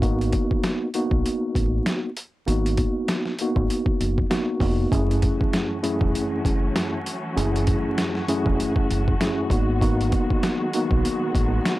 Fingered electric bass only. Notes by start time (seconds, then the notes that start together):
Already playing: G#1
1.11 B1
1.55 A1
2.47 G#1
3.56 G#1
4.00 F#1
4.60 F1
4.92 F#1
6.01 E1
6.45 F#1
7.37 F#1
8.46 E1
8.90 F#1
9.50 G#1
10.91 B1
11.35 A1